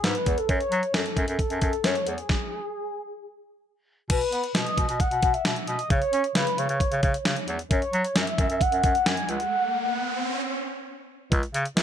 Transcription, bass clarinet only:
0.04 0.14 G#2 medium
0.27 0.37 E2 medium
0.49 0.59 F#2 loud
0.71 0.82 F#3 loud
0.94 1.04 F#2 medium
1.17 1.27 F#2 loud
1.28 1.38 F#2 loud
1.51 1.61 F#2 loud
1.62 1.72 F#2 loud
1.85 1.95 F#2 loud
2.07 2.17 E2 medium
4.10 4.20 B2 loud
4.32 4.43 B3 medium
4.55 4.65 B2 medium
4.78 4.88 B2 medium
4.89 4.99 B2 medium
5.11 5.22 B2 medium
5.23 5.33 B2 loud
5.45 5.56 B2 medium
5.68 5.78 B2 medium
5.90 6.01 C#3 loud
6.13 6.23 C#4 loud
6.35 6.46 C#3 loud
6.58 6.68 C#3 loud
6.69 6.80 C#3 medium
6.92 7.02 C#3 loud
7.03 7.13 C#3 loud
7.26 7.36 C#3 loud
7.48 7.59 E2 medium
7.71 7.81 F#2 loud
7.93 8.04 F#3 loud
8.16 8.26 F#2 loud
8.38 8.49 F#2 loud
8.50 8.60 F#2 loud
8.72 8.83 F#2 loud
8.84 8.94 F#2 loud
9.06 9.17 F#2 loud
9.29 9.39 C#2 medium
11.32 11.42 C#2 loud
11.54 11.65 C#3 loud
11.77 11.83 C#2 loud

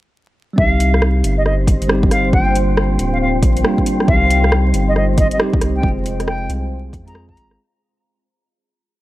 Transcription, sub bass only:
0.58 1.23 C2 medium
1.24 1.80 G1 medium
1.81 2.32 G1 medium
2.33 2.98 G1 medium
2.99 3.42 D1 loud
3.43 3.63 A#1 loud
4.08 4.73 C2 loud
4.74 5.30 G1 medium
5.61 5.82 C2 medium
5.84 6.48 F1 loud
6.49 6.95 C2 loud
6.93 7.38 F2 loud
7.37 7.57 G#1 medium

